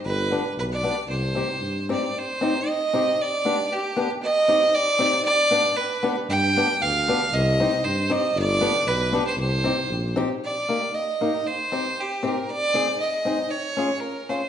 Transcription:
X:1
M:2/4
L:1/16
Q:"Swing" 1/4=116
K:Cm
V:1 name="Fiddle"
=B4 B d3 | c6 d2 | c4 e4 | d4 G3 z |
e4 d4 | d4 =B3 z | g4 f4 | e4 c2 e2 |
d4 =B3 c | c6 z2 | [K:Eb] d4 e4 | c4 G2 B2 |
d4 e4 | _d4 B2 c2 |]
V:2 name="Steel-string acoustic guitar"
z2 [=B,DG]2 z2 [B,DG]2 | z2 [CEG]2 z2 [CEG]2 | z2 [CEG]2 z2 [CEG]2 | z2 [=B,DG]2 z2 [B,DG]2 |
z2 [CEG]2 z2 [CEG]2 | z2 [=B,DG]2 z2 [B,DG]2 | z2 [=B,DG]2 z2 [B,DG]2 | z2 [CEG]2 z2 [CEG]2 |
z2 [=B,DG]2 z2 [B,DG]2 | z2 [CEG]2 z2 [CEG]2 | [K:Eb] z2 [B,EG]2 z2 [B,EG]2 | z2 [CEG]2 z2 [CEG]2 |
z2 [CEA]2 z2 [CEA]2 | z2 [_DFA]2 z2 [DFA]2 |]
V:3 name="Tuba" clef=bass
G,,,4 =B,,,4 | C,,4 G,,4 | z8 | z8 |
z8 | z8 | G,,4 D,,4 | C,,4 G,,4 |
G,,,4 =B,,,4 | C,,4 B,,,4 | [K:Eb] z8 | z8 |
z8 | z8 |]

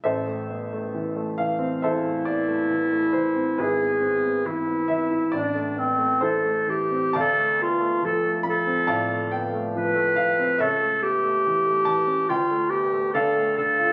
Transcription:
X:1
M:4/4
L:1/16
Q:1/4=69
K:Am
V:1 name="Clarinet"
z8 E8 | ^G4 E4 D2 C2 A2 =G2 | A2 F2 A2 A4 z2 B4 | A2 G6 F2 G2 A2 A2 |]
V:2 name="Grand piano"
[Ace]6 f2 [Ace]2 d4 c2 | [E^GB]6 e2 d4 [EAc]4 | [dfa]6 b2 [dfa]2 g4 f2 | [A^ce]6 a2 g4 [Adf]4 |]
V:3 name="Grand piano"
A,,, A, B, A, E, A, E, C E,, A, B, A, E, A, E, C | ^G,,, B, C B, E, B, E, E A,,, A, B, A, E, A, E, C | D,, A, B, A, F, A, F, C A,, A, B, A, F, A, F, C | ^C,, A, B, A, E, A, E, ^C D,, A, B, A, D, A, D, F |]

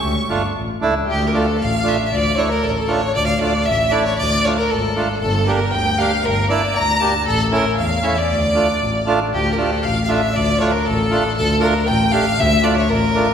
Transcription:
X:1
M:2/4
L:1/16
Q:1/4=117
K:Dm
V:1 name="Violin"
^c'3- c'/2 z4 z/2 | G2 A2 f4 | d2 ^c B A A c2 | d2 d3/2 f/2 e2 d2 |
d3 B A4 | A2 B2 g2 f2 | B2 d2 b4 | A2 B2 f3 d- |
d6 z2 | G4 f2 e2 | d2 ^c B A4 | A2 B2 g2 f2 |
e2 d ^c B4 |]
V:2 name="Violin"
^c'4 z4 | G3/2 B/2 A2 f2 e3/2 e/2 | d2 ^c B A/2 B/2 A c2 | d f d2 e2 d ^c |
d2 ^c B A4 | A2 B2 g2 f2 | B2 d2 b2 a2 | A2 B2 f2 e d- |
d6 z2 | G3/2 B/2 A2 f3/2 f/2 e2 | d2 ^c B A4 | A2 B2 g2 f2 |
e2 d ^c B4 |]
V:3 name="Accordion"
z2 [A,DF] z3 [A,DE] z | z2 [A,DF] z3 [A,DF] z | z2 [A,DE] z3 [A,DF] z | z2 [A,DF] z3 [A,DE] z |
z2 [A,DF] z3 [A,DF] z | z2 [B,DG] z3 [B,DG] z | z2 [B,DE] z3 [B,DG] z | z2 [A,^CE] z3 [A,CE] z |
z2 [A,DF] z3 [A,DF] z | z2 [A,DF] z3 [A,DF] z | z2 [A,DF] z3 [A,DF] z | z2 [A,DF] z3 [A,DG] z |
z2 [A,DF] z3 [A,DF] z |]
V:4 name="Double bass" clef=bass
D,,2 G,,,2 A,,,2 ^C,,2 | D,,4 A,,,4 | D,,4 A,,,4 | D,,4 A,,,4 |
D,,4 ^G,,,4 | G,,,4 D,,4 | G,,,4 D,,4 | A,,,4 E,,4 |
D,,4 A,,,4 | D,,4 A,,,4 | D,,4 A,,,4 | D,,4 A,,,4 |
D,,4 A,,,4 |]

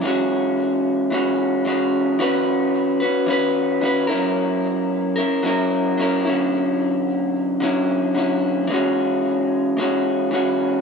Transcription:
X:1
M:4/4
L:1/8
Q:1/4=111
K:Elyd
V:1 name="Clean electric guitar"
[E,G,CF]4 [E,G,CF]2 [E,G,CF]2 | [E,CFB]3 [CFB] [E,CFB]2 [E,CFB] [F,CEA]- | [F,CEA]3 [CEA] [F,CEA]2 [F,CEA] [=D,F,CE]- | [=D,F,CE]4 [D,F,CE]2 [D,F,CE]2 |
[E,G,CF]4 [E,G,CF]2 [E,G,CF]2 |]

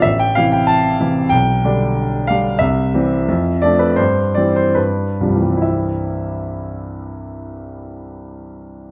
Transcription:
X:1
M:2/4
L:1/16
Q:1/4=82
K:C
V:1 name="Grand piano"
e g f g a4 | g6 f2 | e6 d B | c2 d c B4 |
[C,,G,,E,G,CEe]8- | [C,,G,,E,G,CEe]8 |]
V:2 name="Grand piano" clef=bass
A,,,2 [C,E,E]4 [C,E,E]2 | B,,,2 [D,G,D]4 [D,G,D]2 | C,,2 [E,G,C]2 F,,2 [F,A,D]2 | G,,2 [E,G,C]2 G,,2 [F,G,D]2 |
z8 | z8 |]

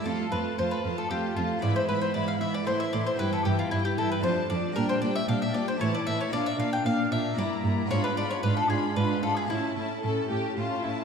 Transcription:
X:1
M:3/4
L:1/16
Q:1/4=115
K:Ddor
V:1 name="Violin section"
a2 a2 a2 a2 a2 a2 | b2 b2 b2 b2 c'2 c'2 | g2 g2 g2 g2 a2 a2 | [K:Aphr] g2 g2 g2 g2 a2 a2 |
f2 f2 f2 f2 b2 b2 | =b2 b2 b2 b2 b2 b2 | a2 a2 a2 a2 a2 a2 |]
V:2 name="Mandolin"
A2 B2 c B2 A G2 F2 | d c B c d f e d c e d c | B A G F E G A B c2 d2 | [K:Aphr] B c d e f e d c ^c d e c |
d e f g f2 e2 d4 | ^c =B d c B A ^G2 B2 A G | E8- E2 z2 |]
V:3 name="Violin section"
F2 F2 F2 F2 F2 F2 | E2 E2 E2 E2 E2 E2 | E2 E2 E2 E2 D2 D2 | [K:Aphr] D2 D2 D2 D2 E2 E2 |
D2 D2 D2 D2 E2 E2 | ^E2 E2 E2 E2 E2 E2 | E2 E2 A2 G2 F2 E2 |]
V:4 name="Viola section"
A,2 A,2 A,2 A,2 A,2 A,2 | E,2 E,2 E,2 E,2 E,2 E,2 | E,2 E,2 E,2 E,2 F,2 F,2 | [K:Aphr] G,2 G,2 G,2 G,2 E,2 E,2 |
B,2 B,2 B,2 B,2 B,2 B,2 | D2 D2 D2 D2 D2 D2 | ^C2 C2 C2 C2 C2 C2 |]
V:5 name="Harpsichord"
[A,DF]12 | [B,E]8 [A,E]4 | [B,E]8 [A,DF]4 | [K:Aphr] [B,DG]8 [A,EA]4 |
[B,DF]8 [B,DE]4 | [=B,D^E]12 | [A,^CE]12 |]
V:6 name="Harpsichord" clef=bass
F,,2 F,,2 F,,2 F,,2 F,,2 F,,2 | ^G,,2 G,,2 G,,2 G,,2 A,,2 A,,2 | G,,2 G,,2 G,,2 G,,2 F,,2 F,,2 | [K:Aphr] B,,2 B,,2 B,,2 B,,2 A,,2 A,,2 |
B,,2 B,,2 B,,2 B,,2 G,,2 G,,2 | ^G,,2 G,,2 G,,2 G,,2 G,,2 G,,2 | A,,2 A,,2 A,,2 A,,2 A,,2 A,,2 |]
V:7 name="Cello section" clef=bass
F,,2 F,,2 F,,2 F,,2 F,,2 F,,2 | ^G,,2 G,,2 G,,2 G,,2 A,,2 A,,2 | G,,2 G,,2 G,,2 G,,2 F,,2 F,,2 | [K:Aphr] B,,2 B,,2 B,,2 B,,2 A,,2 A,,2 |
B,,2 B,,2 B,,2 B,,2 G,,2 G,,2 | ^G,,2 G,,2 G,,2 G,,2 G,,2 G,,2 | A,,2 A,,2 A,,2 A,,2 A,,2 A,,2 |]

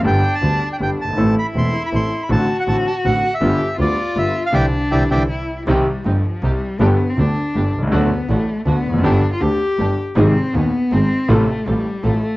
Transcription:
X:1
M:3/4
L:1/16
Q:1/4=160
K:C
V:1 name="Bandoneon"
g3 a4 g g2 a2- | a2 b2 c'3 b c'3 b | a3 ^f a2 a2 f3 e- | e4 d4 e3 f |
[deg]2 z2 [deg]2 [deg]2 z4 | [K:Cm] z12 | z12 | z12 |
z12 | z12 | z12 |]
V:2 name="String section"
z12 | z12 | z12 | z12 |
z12 | [K:Cm] [CEG]2 z2 [CEG]2 z2 [CEG]2 z2 | [=B,DG]2 z2 [B,DG]2 z2 [B,DG]2 z2 | [=A,D^F]2 z2 [A,DF]2 z2 [A,DF]2 z2 |
[=B,DG]2 z2 [B,DG]2 z2 [B,DG]2 z2 | [CEA]2 z2 [CEA]2 z2 [CEA]2 z2 | [CF=A]2 z2 [CFA]2 z2 [CFA]2 z2 |]
V:3 name="Cello"
D8- D2 z2 | E12 | ^F12 | G4 F8 |
D8 E4 | [K:Cm] G,4 F,4 G,4 | =B,3 C D6 z2 | =B,4 =A,4 B,4 |
D3 F G6 z2 | C4 =B,4 C4 | =A,4 G,4 A,4 |]
V:4 name="Grand piano" clef=bass
[G,,,G,,D,G,B,G]2 z2 [D,,D,G,B,G]2 z2 [G,,,G,,D,G,B,G]2 z/2 ^F,,,/2 G,,,/2 _A,,,/2 | [A,,,A,,E,A,CA]2 z2 [E,,,E,,E,A,CA]2 z2 [A,,,A,,E,A,CA]2 z2 | [A,,,A,,D,A,C^F]2 z2 [A,,,A,,D,A,CF]2 z2 [A,,,A,,D,A,CF]2 z2 | [G,,,G,,D,G,B,F]2 z2 [D,,D,G,B,F]2 z2 [G,,,G,,D,G,B,F]2 z2 |
[D,E,G,]2 z2 [D,E,G,]2 [D,E,G,]2 z4 | [K:Cm] [C,,C,E,G,CG]2 z2 [G,,,G,,]2 z2 [C,,C,]2 z2 | [G,,,G,,D,G,=B,G]2 z2 [D,,D,]2 z2 [G,,,G,,]2 z/2 =B,,,/2 C,,/2 _D,,/2 | [D,,D,^F,=A,^F]2 z2 [=A,,,=A,,]2 z2 [D,,D,]2 z/2 =E,,/2 =F,,/2 ^F,,/2 |
[G,,,G,,D,G,=B,G]2 z2 [D,,D,]2 z2 [G,,,G,,]2 z2 | [A,,,A,,C,E,A,E]2 z2 [E,,,E,,]2 z2 [A,,,A,,]2 z2 | [=A,,,=A,,C,F,=A,F]2 z2 [A,,,A,,]2 z2 [A,,,A,,]2 z2 |]
V:5 name="Double bass" clef=bass
G,,,2 z2 D,,2 z2 G,,,2 G,,,2 | A,,,2 z2 E,,,2 z2 A,,,2 z2 | A,,,2 z2 A,,,2 z2 A,,,2 z2 | G,,,2 z2 D,,2 z2 G,,,2 z2 |
C,,2 z2 C,,2 C,,2 z4 | [K:Cm] C,,2 z2 G,,,2 z2 C,,2 z2 | G,,,2 z2 D,,2 z2 G,,,2 C,,2 | D,,2 z2 =A,,,2 z2 D,,2 F,,,2 |
G,,,2 z2 D,,2 z2 G,,,2 z2 | A,,,2 z2 E,,2 z2 A,,,2 z2 | =A,,,2 z2 A,,,2 z2 A,,,2 z2 |]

